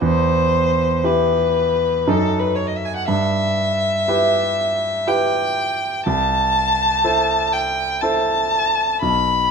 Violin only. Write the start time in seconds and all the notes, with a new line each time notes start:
0.03 C5
1.05 B4
2.09 A4
2.39 B4
2.55 C#5
2.67 D#5
2.76 E5
2.86 G#5
2.96 F#5
3.09 E5
5.07 G5
6.06 A5
7.53 G5
8.01 A5
9.02 B5